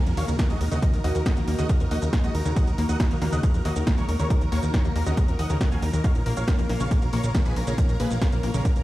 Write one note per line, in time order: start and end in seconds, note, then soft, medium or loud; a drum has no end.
0.00 6.00 D#4 medium
0.00 6.00 F#4 medium
0.00 8.83 A#4 medium
0.00 downlifter medium
0.06 0.14 F2 medium
0.06 0.14 A#4 medium
0.06 closed hi-hat soft
0.06 shaker soft
0.17 0.25 D#2 loud
0.17 0.20 A#3 loud
0.17 0.24 C#5 medium
0.17 0.24 F5 medium
0.17 open hi-hat loud
0.28 0.36 D#2 medium
0.28 0.35 C#3 medium
0.28 0.35 A#4 medium
0.28 closed hi-hat soft
0.28 shaker medium
0.39 0.46 D#3 medium
0.39 0.46 A#4 medium
0.39 kick loud
0.39 snare loud
0.39 closed hi-hat medium
0.39 shaker medium
0.50 0.58 D#2 medium
0.50 0.55 G#3 medium
0.50 0.57 F#4 medium
0.50 0.57 D#5 medium
0.50 closed hi-hat soft
0.50 shaker soft
0.61 0.68 D#2 loud
0.61 0.68 A#4 medium
0.61 open hi-hat loud
0.72 0.79 D#2 medium
0.72 0.76 C#3 loud
0.72 0.79 F#4 medium
0.72 0.79 D#5 loud
0.72 closed hi-hat soft
0.72 shaker medium
0.82 0.90 D#3 loud
0.82 0.90 A#4 medium
0.82 kick loud
0.82 closed hi-hat loud
0.82 shaker medium
0.93 1.01 D#2 medium
0.93 1.00 D#3 medium
0.93 1.01 A#4 medium
0.93 closed hi-hat soft
0.93 shaker soft
1.04 1.12 D#2 loud
1.04 1.07 A#3 loud
1.04 1.11 F#4 medium
1.04 1.11 D#5 medium
1.04 open hi-hat loud
1.15 1.23 D#2 medium
1.15 1.22 A#4 medium
1.15 closed hi-hat soft
1.15 shaker medium
1.26 1.33 D#3 medium
1.26 1.33 F#4 medium
1.26 1.33 D#5 loud
1.26 kick loud
1.26 snare loud
1.26 closed hi-hat medium
1.26 shaker soft
1.37 1.45 D#2 medium
1.37 1.42 A#3 loud
1.37 1.44 A#4 medium
1.37 closed hi-hat soft
1.37 shaker soft
1.48 1.55 D#2 loud
1.48 1.52 A#3 loud
1.48 1.55 A#4 medium
1.48 open hi-hat loud
1.59 1.66 D#2 medium
1.59 1.63 C#3 loud
1.59 1.66 F#4 medium
1.59 1.66 D#5 loud
1.59 closed hi-hat soft
1.59 shaker medium
1.69 1.77 C#3 loud
1.69 1.77 A#4 medium
1.69 kick loud
1.69 closed hi-hat medium
1.69 shaker soft
1.80 1.88 F2 medium
1.80 1.88 A#4 medium
1.80 closed hi-hat soft
1.80 shaker soft
1.91 1.99 D#2 loud
1.91 1.94 A#3 loud
1.91 1.98 F#4 medium
1.91 1.98 D#5 medium
1.91 open hi-hat loud
2.02 2.10 D#2 medium
2.02 2.09 C#3 medium
2.02 2.09 A#4 medium
2.02 closed hi-hat soft
2.02 shaker medium
2.13 2.20 D#3 medium
2.13 2.20 A#4 medium
2.13 kick loud
2.13 snare loud
2.13 closed hi-hat medium
2.13 shaker medium
2.24 2.31 D#2 medium
2.24 2.29 G#3 medium
2.24 2.31 F#4 medium
2.24 2.31 D#5 loud
2.24 closed hi-hat soft
2.24 shaker soft
2.35 2.42 D#2 loud
2.35 2.42 A#4 medium
2.35 open hi-hat loud
2.45 2.53 D#2 medium
2.45 2.50 C#3 loud
2.45 2.53 A#4 medium
2.45 closed hi-hat soft
2.45 shaker medium
2.56 2.63 D#3 loud
2.56 2.64 D#5 medium
2.56 2.64 F#5 loud
2.56 kick loud
2.56 closed hi-hat medium
2.56 shaker medium
2.67 2.75 D#2 medium
2.67 2.74 D#3 medium
2.67 2.74 A#4 medium
2.67 closed hi-hat soft
2.67 shaker soft
2.78 2.86 D#2 loud
2.78 2.81 A#3 loud
2.78 2.85 A#4 medium
2.78 open hi-hat loud
2.89 2.97 D#2 medium
2.89 2.96 D#5 medium
2.89 2.96 F#5 medium
2.89 closed hi-hat soft
2.89 shaker medium
3.00 3.07 D#3 medium
3.00 3.07 A#4 medium
3.00 kick loud
3.00 snare loud
3.00 closed hi-hat medium
3.00 shaker medium
3.11 3.18 D#2 medium
3.11 3.15 A#3 loud
3.11 3.18 A#4 medium
3.11 closed hi-hat soft
3.11 shaker soft
3.22 3.29 D#2 loud
3.22 3.26 A#3 loud
3.22 3.29 A#4 medium
3.22 snare medium
3.22 open hi-hat loud
3.32 3.40 D#2 medium
3.32 3.37 C#3 loud
3.32 3.40 D#5 medium
3.32 3.40 F#5 loud
3.32 closed hi-hat soft
3.32 shaker medium
3.43 3.50 C#3 loud
3.43 3.51 A#4 medium
3.43 kick loud
3.43 closed hi-hat medium
3.43 shaker medium
3.54 3.62 F2 medium
3.54 3.61 A#4 medium
3.54 closed hi-hat soft
3.54 shaker soft
3.65 3.73 D#2 medium
3.65 3.68 A#3 loud
3.65 3.72 F#4 medium
3.65 3.72 D#5 medium
3.65 open hi-hat loud
3.76 3.84 D#2 medium
3.76 3.83 C#3 medium
3.76 3.83 A#4 medium
3.76 closed hi-hat soft
3.76 shaker medium
3.87 3.94 D#3 medium
3.87 3.94 A#4 medium
3.87 kick loud
3.87 snare loud
3.87 closed hi-hat medium
3.87 shaker medium
3.98 4.05 D#2 medium
3.98 4.02 G#3 medium
3.98 4.05 A#4 medium
3.98 4.05 C#5 medium
3.98 closed hi-hat soft
3.98 shaker soft
4.09 4.16 D#2 loud
4.09 4.16 A#4 medium
4.09 open hi-hat loud
4.19 4.27 D#2 medium
4.19 4.24 C#3 loud
4.19 4.27 A#4 medium
4.19 4.27 C#5 loud
4.19 closed hi-hat soft
4.19 shaker medium
4.30 4.37 D#3 loud
4.30 4.38 A#4 medium
4.30 kick loud
4.30 closed hi-hat medium
4.30 shaker medium
4.41 4.49 D#2 medium
4.41 4.48 D#3 medium
4.41 4.48 A#4 medium
4.41 closed hi-hat soft
4.41 shaker soft
4.52 4.60 D#2 loud
4.52 4.55 A#3 loud
4.52 4.59 A#4 medium
4.52 4.59 C#5 medium
4.52 open hi-hat loud
4.63 4.71 D#2 medium
4.63 4.70 A#4 medium
4.63 shaker medium
4.74 4.81 D#3 medium
4.74 4.81 A#4 medium
4.74 4.81 C#5 loud
4.74 kick loud
4.74 snare loud
4.74 closed hi-hat medium
4.74 shaker medium
4.85 4.92 D#2 medium
4.85 4.89 A#3 loud
4.85 4.92 A#4 medium
4.85 closed hi-hat soft
4.85 shaker soft
4.96 5.03 D#2 loud
4.96 5.00 A#3 loud
4.96 5.03 A#4 medium
4.96 open hi-hat loud
5.06 5.14 D#2 medium
5.06 5.11 C#3 loud
5.06 5.14 F#4 medium
5.06 5.14 D#5 loud
5.06 closed hi-hat soft
5.06 shaker medium
5.17 5.24 C#3 loud
5.17 5.24 A#4 medium
5.17 kick loud
5.17 closed hi-hat medium
5.17 shaker medium
5.28 5.36 F2 medium
5.28 5.35 A#4 medium
5.28 closed hi-hat soft
5.28 shaker soft
5.39 5.47 D#2 loud
5.39 5.42 D#4 medium
5.39 5.46 D#5 medium
5.39 5.46 F#5 loud
5.39 open hi-hat loud
5.50 5.58 D#2 medium
5.50 5.55 C#3 loud
5.50 5.57 A#4 medium
5.50 closed hi-hat soft
5.50 shaker medium
5.61 5.65 D#3 loud
5.61 5.68 A#4 medium
5.61 kick loud
5.61 snare loud
5.61 closed hi-hat medium
5.61 shaker medium
5.72 5.79 D#2 medium
5.72 5.76 F#3 loud
5.72 5.79 F5 medium
5.72 5.79 G#5 loud
5.72 closed hi-hat soft
5.72 shaker soft
5.82 5.90 D#2 loud
5.82 5.90 D#3 medium
5.82 5.90 A#4 medium
5.82 open hi-hat loud
5.93 6.01 D#2 medium
5.93 6.00 D#3 medium
5.93 6.01 A#4 medium
5.93 closed hi-hat soft
5.93 shaker medium
6.04 6.11 D#3 loud
6.04 8.83 A#3 medium
6.04 8.83 C#5 medium
6.04 6.11 C#5 medium
6.04 8.83 F5 medium
6.04 6.11 F5 loud
6.04 kick loud
6.04 closed hi-hat medium
6.04 shaker medium
6.15 6.23 A#1 medium
6.15 6.22 D#3 medium
6.15 6.22 A#4 medium
6.15 closed hi-hat soft
6.15 shaker soft
6.26 6.34 A#1 loud
6.26 6.29 A#3 loud
6.26 6.33 A#4 medium
6.26 open hi-hat loud
6.37 6.45 A#1 medium
6.37 6.44 C#5 medium
6.37 6.44 F5 loud
6.37 closed hi-hat soft
6.37 shaker medium
6.48 6.55 D#3 medium
6.48 6.55 A#4 medium
6.48 kick loud
6.48 snare loud
6.48 closed hi-hat medium
6.48 shaker medium
6.59 6.66 A#1 medium
6.59 6.63 A#3 loud
6.59 6.66 A#4 medium
6.59 closed hi-hat soft
6.59 shaker soft
6.69 6.77 A#1 loud
6.69 6.74 A#3 loud
6.69 6.77 A#4 medium
6.69 snare medium
6.69 open hi-hat loud
6.80 6.88 A#1 medium
6.80 6.85 C#3 loud
6.80 6.88 C#5 medium
6.80 6.88 F5 loud
6.80 closed hi-hat soft
6.80 shaker medium
6.91 6.98 C#3 loud
6.91 6.98 A#4 medium
6.91 kick loud
6.91 closed hi-hat medium
6.91 shaker medium
7.02 7.10 B1 medium
7.02 7.09 A#4 medium
7.02 closed hi-hat soft
7.02 shaker soft
7.13 7.21 A#1 loud
7.13 7.16 A#3 loud
7.13 7.20 A#4 medium
7.13 7.20 C#5 loud
7.13 open hi-hat loud
7.24 7.31 A#1 medium
7.24 7.31 C#3 medium
7.24 7.31 A#4 medium
7.24 closed hi-hat soft
7.24 shaker medium
7.35 7.42 D#3 medium
7.35 7.42 A#4 medium
7.35 kick loud
7.35 snare loud
7.35 closed hi-hat medium
7.35 shaker medium
7.45 7.53 A#1 medium
7.45 7.50 G#3 medium
7.45 7.53 G#4 medium
7.45 7.53 B4 medium
7.45 closed hi-hat soft
7.45 shaker soft
7.56 7.64 A#1 loud
7.56 7.64 A#4 medium
7.56 open hi-hat loud
7.67 7.75 A#1 medium
7.67 7.72 C#3 loud
7.67 7.75 C#4 medium
7.67 7.75 A#4 loud
7.67 closed hi-hat soft
7.67 shaker medium
7.78 7.85 D#3 loud
7.78 7.85 A#4 medium
7.78 kick loud
7.78 closed hi-hat medium
7.78 shaker medium
7.89 7.97 A#1 medium
7.89 7.96 D#3 medium
7.89 7.96 A#4 medium
7.89 closed hi-hat soft
7.89 shaker soft
8.00 8.08 A#1 loud
8.00 8.03 A#3 loud
8.00 8.07 G#4 medium
8.00 8.07 B4 medium
8.00 open hi-hat loud
8.11 8.18 A#1 medium
8.11 8.18 A#4 medium
8.11 closed hi-hat soft
8.11 shaker medium
8.22 8.29 D#3 medium
8.22 8.29 C#4 medium
8.22 8.29 A#4 medium
8.22 kick loud
8.22 snare loud
8.22 closed hi-hat medium
8.22 shaker medium
8.32 8.40 A#1 medium
8.32 8.37 A#3 loud
8.32 8.40 A#4 medium
8.32 closed hi-hat soft
8.32 shaker soft
8.43 8.51 A#1 loud
8.43 8.48 A#3 loud
8.43 8.51 A#4 medium
8.43 open hi-hat loud
8.54 8.62 A#1 medium
8.54 8.59 C#3 loud
8.54 8.61 C#4 medium
8.54 8.61 A#4 loud
8.54 closed hi-hat soft
8.54 shaker medium
8.65 8.72 C#3 loud
8.65 8.72 A#4 medium
8.65 kick loud
8.65 closed hi-hat medium
8.65 shaker medium
8.76 8.83 B1 medium
8.76 8.83 A#4 medium
8.76 closed hi-hat soft
8.76 shaker soft